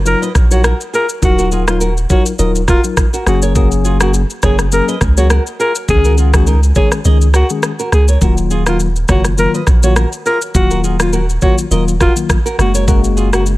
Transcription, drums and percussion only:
0.06 shaker medium
0.23 shaker medium
0.35 kick medium
0.35 cross-stick medium
0.35 shaker medium
0.51 shaker medium
0.64 cross-stick loud
0.64 shaker medium
0.81 shaker medium
0.94 shaker medium
1.09 shaker loud
1.22 kick loud
1.22 shaker medium
1.39 shaker medium
1.52 shaker medium
1.68 cross-stick loud
1.68 shaker medium
1.81 shaker medium
1.97 shaker medium
2.10 kick medium
2.10 shaker medium
2.26 shaker medium
2.39 shaker medium
2.55 shaker medium
2.68 kick medium
2.68 cross-stick medium
2.68 shaker soft
2.84 shaker medium
2.97 kick medium
2.97 cross-stick loud
2.97 shaker medium
3.13 shaker medium
3.27 cross-stick medium
3.27 shaker medium
3.42 shaker loud
3.55 kick loud
3.55 shaker medium
3.72 shaker medium
3.85 shaker medium
4.00 cross-stick loud
4.00 shaker medium
4.14 shaker medium
4.30 shaker medium
4.42 kick medium
4.42 cross-stick medium
4.42 shaker medium
4.59 cross-stick medium
4.59 shaker medium
4.72 shaker medium
4.88 shaker medium
5.01 kick medium
5.01 cross-stick medium
5.01 shaker medium
5.17 shaker medium
5.30 cross-stick loud
5.30 shaker medium
5.47 shaker medium
5.60 shaker medium
5.75 shaker loud
5.88 kick loud
5.88 shaker medium
6.05 shaker medium
6.18 shaker medium
6.34 kick medium
6.34 cross-stick loud
6.34 shaker medium
6.47 shaker medium
6.63 shaker soft
6.75 kick medium
6.75 shaker medium
6.92 cross-stick medium
6.92 shaker medium
7.05 shaker medium
7.21 shaker medium
7.34 cross-stick medium
7.34 shaker medium
7.50 shaker medium
7.63 cross-stick loud
7.63 shaker medium
7.79 shaker medium
7.92 cross-stick medium
7.92 shaker medium
8.08 shaker loud
8.21 kick loud
8.21 shaker medium
8.37 shaker medium
8.51 shaker medium
8.66 cross-stick loud
8.66 shaker medium
8.80 shaker medium
8.96 shaker medium
9.08 kick medium
9.08 cross-stick medium
9.08 shaker medium
9.25 cross-stick medium
9.25 shaker medium
9.38 shaker medium
9.54 shaker medium
9.67 kick medium
9.67 cross-stick medium
9.67 shaker medium
9.83 shaker medium
9.96 cross-stick loud
9.96 shaker medium
10.12 shaker medium
10.26 shaker medium
10.41 shaker loud
10.55 kick loud
10.55 shaker medium
10.71 shaker medium
10.84 shaker medium
11.00 cross-stick loud
11.00 shaker medium
11.13 shaker medium
11.29 shaker medium
11.42 kick medium
11.42 shaker medium
11.58 shaker medium
11.71 shaker medium
11.88 shaker medium
12.01 kick medium
12.01 cross-stick medium
12.01 shaker soft
12.16 shaker medium
12.29 kick medium
12.29 cross-stick loud
12.29 shaker medium
12.46 shaker medium
12.59 cross-stick medium
12.59 shaker medium
12.75 shaker loud
12.88 kick loud
12.88 shaker medium
13.04 shaker medium
13.17 shaker medium
13.33 cross-stick loud
13.33 shaker medium
13.46 shaker medium

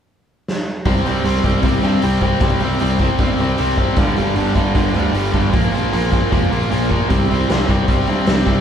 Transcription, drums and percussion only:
0.48 snare medium
0.85 kick loud
0.85 open hi-hat medium
1.06 open hi-hat medium
1.25 open hi-hat medium
1.44 kick medium
1.44 open hi-hat medium
1.63 kick loud
1.63 open hi-hat medium
1.82 open hi-hat medium
2.02 open hi-hat medium
2.21 kick medium
2.21 open hi-hat soft
2.40 kick loud
2.40 open hi-hat medium
2.60 open hi-hat medium
2.79 open hi-hat medium
2.99 kick medium
2.99 open hi-hat medium
3.18 kick loud
3.18 open hi-hat medium
3.38 open hi-hat soft
3.58 open hi-hat medium
3.78 kick medium
3.78 open hi-hat soft
3.96 kick loud
3.96 open hi-hat medium
4.16 open hi-hat medium
4.36 open hi-hat medium
4.56 kick medium
4.56 open hi-hat medium
4.75 kick loud
4.75 open hi-hat medium
4.94 open hi-hat medium
5.15 open hi-hat medium
5.33 kick medium
5.33 open hi-hat soft
5.53 kick loud
5.53 open hi-hat medium
5.74 open hi-hat soft
5.93 open hi-hat medium
6.12 kick medium
6.12 open hi-hat medium
6.32 kick loud
6.32 open hi-hat medium
6.52 open hi-hat soft
6.71 open hi-hat medium
6.91 kick medium
6.91 open hi-hat soft
7.10 kick loud
7.10 open hi-hat medium
7.31 open hi-hat soft
7.49 snare loud
7.49 open hi-hat medium
7.69 kick medium
7.69 open hi-hat medium
7.88 kick loud
7.88 open hi-hat medium
8.07 open hi-hat medium
8.26 snare loud
8.26 open hi-hat medium
8.47 kick medium
8.47 open hi-hat soft

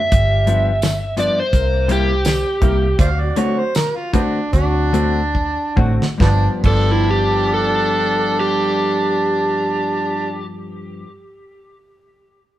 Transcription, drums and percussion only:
0.12 kick loud
0.12 closed hi-hat medium
0.47 closed hi-hat medium
0.82 snare loud
0.82 closed hi-hat medium
0.82 tambourine loud
1.17 closed hi-hat medium
1.53 kick medium
1.53 closed hi-hat medium
1.89 closed hi-hat medium
2.25 snare loud
2.25 closed hi-hat medium
2.25 tambourine loud
2.62 kick medium
2.62 closed hi-hat medium
2.99 kick loud
2.99 closed hi-hat medium
3.36 closed hi-hat medium
3.75 snare loud
3.75 closed hi-hat medium
3.75 tambourine loud
4.14 kick medium
4.14 closed hi-hat medium
4.53 kick medium
4.53 closed hi-hat medium
4.94 closed hi-hat medium
5.35 kick medium
5.77 kick medium
6.02 snare medium
6.20 kick loud
6.20 snare medium
6.64 kick medium
6.64 crash medium

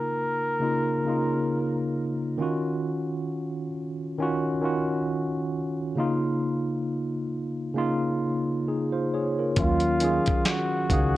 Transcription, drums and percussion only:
9.56 kick loud
9.56 closed hi-hat medium
9.80 closed hi-hat soft
10.00 closed hi-hat medium
10.26 kick medium
10.26 closed hi-hat soft
10.45 snare loud
10.45 clap medium
10.45 closed hi-hat medium
10.90 kick loud
10.90 closed hi-hat medium

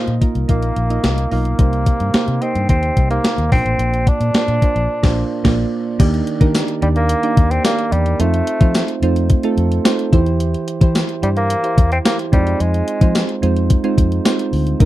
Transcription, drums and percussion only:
0.08 closed hi-hat soft
0.22 kick medium
0.22 closed hi-hat medium
0.35 closed hi-hat soft
0.49 kick medium
0.49 closed hi-hat medium
0.62 closed hi-hat soft
0.76 closed hi-hat medium
0.90 closed hi-hat soft
1.04 snare loud
1.04 closed hi-hat medium
1.18 closed hi-hat soft
1.32 open hi-hat medium
1.45 closed hi-hat soft
1.59 kick loud
1.59 closed hi-hat medium
1.73 closed hi-hat soft
1.86 kick medium
1.86 closed hi-hat medium
2.00 closed hi-hat medium
2.14 snare loud
2.14 closed hi-hat loud
2.28 closed hi-hat soft
2.42 closed hi-hat medium
2.55 closed hi-hat soft
2.69 kick medium
2.69 closed hi-hat medium
2.83 closed hi-hat soft
2.97 kick medium
2.97 closed hi-hat medium
3.11 closed hi-hat medium
3.24 snare loud
3.24 closed hi-hat medium
3.38 closed hi-hat soft
3.52 kick loud
3.52 open hi-hat medium
3.66 closed hi-hat soft
3.79 closed hi-hat medium
3.94 closed hi-hat medium
4.07 kick medium
4.07 closed hi-hat medium
4.21 closed hi-hat medium
4.34 snare loud
4.34 closed hi-hat medium
4.48 closed hi-hat medium
4.62 kick medium
4.62 closed hi-hat medium
4.76 closed hi-hat soft
5.03 kick loud
5.03 snare loud
5.03 crash medium
5.45 kick loud
5.45 snare loud
5.45 crash medium
6.00 kick loud
6.00 closed hi-hat loud
6.00 crash loud
6.14 closed hi-hat medium
6.27 closed hi-hat medium
6.41 kick loud
6.41 closed hi-hat medium
6.55 snare loud
6.55 closed hi-hat loud
6.55 tambourine medium
6.68 closed hi-hat medium
6.82 closed hi-hat medium
6.96 closed hi-hat medium
7.09 closed hi-hat loud
7.23 closed hi-hat medium
7.37 kick loud
7.37 closed hi-hat medium
7.51 closed hi-hat medium
7.65 snare loud
7.65 closed hi-hat medium
7.65 tambourine medium
7.79 closed hi-hat medium
7.92 closed hi-hat medium
8.06 closed hi-hat medium
8.20 closed hi-hat loud
8.34 closed hi-hat medium
8.47 closed hi-hat medium
8.61 kick loud
8.61 closed hi-hat medium
8.75 snare loud
8.75 closed hi-hat loud
8.75 tambourine medium
8.88 closed hi-hat medium
9.03 closed hi-hat medium
9.16 closed hi-hat medium
9.30 kick medium
9.30 closed hi-hat loud
9.43 closed hi-hat medium
9.58 closed hi-hat medium
9.72 closed hi-hat medium
9.85 snare loud
9.85 closed hi-hat medium
9.85 tambourine medium
9.99 closed hi-hat medium
10.13 kick loud
10.13 closed hi-hat medium
10.26 closed hi-hat medium
10.40 closed hi-hat loud
10.54 closed hi-hat medium
10.68 closed hi-hat medium
10.81 kick loud
10.81 closed hi-hat medium
10.95 snare loud
10.95 closed hi-hat loud
10.95 tambourine medium
11.09 closed hi-hat medium
11.23 closed hi-hat medium
11.37 closed hi-hat medium
11.50 closed hi-hat loud
11.64 closed hi-hat medium
11.78 kick loud
11.78 closed hi-hat medium
11.92 closed hi-hat medium
12.05 snare loud
12.05 closed hi-hat medium
12.05 tambourine medium
12.19 closed hi-hat medium
12.33 kick loud
12.33 closed hi-hat medium
12.47 closed hi-hat medium
12.60 closed hi-hat loud
12.74 closed hi-hat medium
12.88 closed hi-hat medium
13.01 kick loud
13.01 closed hi-hat medium
13.15 snare loud
13.15 closed hi-hat loud
13.15 tambourine medium
13.29 closed hi-hat medium
13.43 closed hi-hat medium
13.57 closed hi-hat medium
13.70 kick medium
13.70 closed hi-hat loud
13.84 closed hi-hat medium
13.98 kick loud
13.98 closed hi-hat medium
14.12 closed hi-hat medium
14.25 snare loud
14.25 closed hi-hat medium
14.25 tambourine medium
14.39 closed hi-hat medium
14.53 open hi-hat medium
14.67 closed hi-hat medium
14.80 kick loud
14.80 closed hi-hat loud

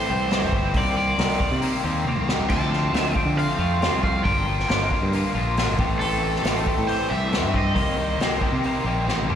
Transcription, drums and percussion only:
0.31 snare loud
0.31 open hi-hat medium
0.53 kick medium
0.74 kick loud
0.74 open hi-hat medium
1.18 snare loud
1.18 open hi-hat medium
1.40 kick medium
1.62 open hi-hat medium
2.05 high tom medium
2.16 mid tom medium
2.29 snare medium
2.39 floor tom medium
2.50 kick loud
2.50 crash medium
2.73 snare soft
2.94 snare loud
2.94 open hi-hat medium
3.16 kick medium
3.38 open hi-hat medium
3.82 snare loud
3.82 open hi-hat medium
4.03 kick medium
4.25 kick loud
4.25 open hi-hat medium
4.60 snare soft
4.69 snare loud
4.69 open hi-hat medium
4.91 kick medium
5.13 open hi-hat medium
5.57 snare loud
5.57 open hi-hat medium
5.79 kick loud
6.01 open hi-hat medium
6.36 snare soft
6.44 snare loud
6.44 open hi-hat medium
6.67 kick medium
6.88 open hi-hat medium
7.32 snare loud
7.32 open hi-hat medium
7.54 kick medium
7.76 kick loud
7.76 open hi-hat medium
8.20 snare loud
8.20 open hi-hat medium
8.41 kick medium
8.63 open hi-hat medium
9.08 snare medium
9.19 high tom medium
9.30 mid tom medium

